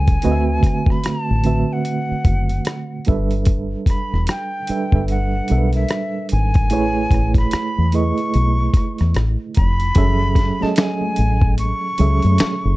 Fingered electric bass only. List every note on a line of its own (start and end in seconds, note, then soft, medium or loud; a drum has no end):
0.00 0.17 C#2 medium
0.25 0.58 D2 medium
1.06 muted fingered electric bass stroke soft
1.31 1.63 A1 medium
2.11 muted fingered electric bass stroke soft
2.26 2.59 F#1 medium
3.09 3.75 G1 medium
4.13 4.26 E1 medium
4.69 muted fingered electric bass stroke soft
4.93 5.40 G1 medium
5.51 5.84 B1 medium
6.33 6.73 G#1 medium
6.73 7.06 A1 medium
7.12 7.45 A1 medium
7.54 muted fingered electric bass stroke soft
7.78 8.11 E2 medium
8.35 8.68 B1 medium
8.75 muted fingered electric bass stroke soft
9.01 9.13 E2 medium
9.16 9.35 A1 medium
9.58 9.90 F1 medium
9.97 10.50 F#1 loud
10.63 muted fingered electric bass stroke soft
11.19 11.72 A1 medium
12.00 12.19 C#2 medium
12.24 12.37 F#2 loud
12.41 muted fingered electric bass stroke soft
12.65 12.77 F#1 medium